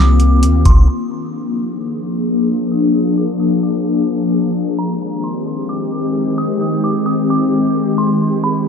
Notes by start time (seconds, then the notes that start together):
Already playing: C2 D#3 A#3 C4 F4 D6
0.20 closed hi-hat
0.43 D2, closed hi-hat
0.65 C2 C6, kick, closed hi-hat
0.88 F3 A#3 D4 G#4
1.11 A#5
1.57 C6
2.03 D6
2.72 D#6
3.17 D6
3.40 D#6
3.63 D6
4.55 D#3 G#3 C4 G4
4.79 A#5
5.24 C6
5.69 D6
6.38 D#6
6.84 D6
7.06 D#6
7.30 D6
7.98 C6
8.21 B3 F4
8.44 B5